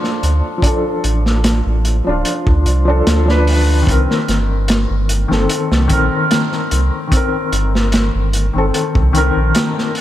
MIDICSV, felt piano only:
0, 0, Header, 1, 2, 480
1, 0, Start_track
1, 0, Tempo, 810811
1, 372, Time_signature, 4, 2, 24, 8
1, 5925, End_track
2, 0, Start_track
2, 0, Title_t, "Felt piano"
2, 0, Program_c, 0, 0
2, 0, Control_c, 0, 64, 127
2, 0, Note_on_c, 0, 53, 88
2, 0, Note_on_c, 0, 62, 77
2, 0, Note_on_c, 0, 65, 82
2, 0, Note_on_c, 0, 69, 96
2, 343, Note_off_c, 0, 53, 0
2, 343, Note_on_c, 0, 53, 67
2, 370, Note_off_c, 0, 62, 0
2, 370, Note_on_c, 0, 62, 59
2, 395, Note_off_c, 0, 69, 0
2, 395, Note_on_c, 0, 69, 75
2, 1175, Note_off_c, 0, 53, 0
2, 1189, Note_off_c, 0, 62, 0
2, 1202, Note_off_c, 0, 69, 0
2, 1210, Note_on_c, 0, 53, 74
2, 1224, Note_on_c, 0, 62, 68
2, 1237, Note_off_c, 0, 65, 0
2, 1237, Note_on_c, 0, 65, 77
2, 1540, Note_off_c, 0, 53, 0
2, 1547, Note_off_c, 0, 62, 0
2, 1554, Note_off_c, 0, 65, 0
2, 1687, Note_on_c, 0, 53, 83
2, 1702, Note_on_c, 0, 62, 77
2, 1713, Note_on_c, 0, 69, 91
2, 1903, Note_off_c, 0, 53, 0
2, 1911, Note_off_c, 0, 62, 0
2, 1916, Note_off_c, 0, 69, 0
2, 1927, Note_on_c, 0, 53, 78
2, 1942, Note_on_c, 0, 62, 76
2, 1955, Note_on_c, 0, 71, 87
2, 2259, Note_off_c, 0, 53, 0
2, 2262, Note_on_c, 0, 51, 70
2, 2266, Note_off_c, 0, 62, 0
2, 2272, Note_off_c, 0, 71, 0
2, 2287, Note_on_c, 0, 60, 64
2, 2299, Control_c, 0, 64, 0
2, 2316, Note_on_c, 0, 70, 75
2, 2407, Control_c, 0, 64, 127
2, 3095, Note_off_c, 0, 51, 0
2, 3108, Note_off_c, 0, 60, 0
2, 3122, Note_off_c, 0, 70, 0
2, 3127, Note_on_c, 0, 51, 76
2, 3140, Note_on_c, 0, 60, 68
2, 3154, Note_on_c, 0, 69, 76
2, 3458, Note_off_c, 0, 51, 0
2, 3465, Note_off_c, 0, 60, 0
2, 3472, Note_off_c, 0, 69, 0
2, 3479, Note_on_c, 0, 51, 88
2, 3493, Note_on_c, 0, 60, 75
2, 3508, Note_on_c, 0, 70, 96
2, 3598, Note_off_c, 0, 51, 0
2, 3605, Note_off_c, 0, 60, 0
2, 3612, Note_off_c, 0, 70, 0
2, 4187, Note_on_c, 0, 51, 68
2, 4214, Note_on_c, 0, 60, 65
2, 4243, Note_on_c, 0, 70, 78
2, 5018, Note_off_c, 0, 51, 0
2, 5031, Note_off_c, 0, 60, 0
2, 5046, Note_off_c, 0, 70, 0
2, 5052, Note_on_c, 0, 51, 72
2, 5063, Note_on_c, 0, 60, 66
2, 5078, Note_on_c, 0, 69, 81
2, 5381, Note_off_c, 0, 51, 0
2, 5387, Note_off_c, 0, 60, 0
2, 5394, Note_off_c, 0, 69, 0
2, 5404, Note_on_c, 0, 51, 91
2, 5417, Note_on_c, 0, 60, 77
2, 5431, Note_on_c, 0, 70, 101
2, 5521, Note_off_c, 0, 51, 0
2, 5527, Note_off_c, 0, 60, 0
2, 5534, Note_off_c, 0, 70, 0
2, 5925, End_track
0, 0, End_of_file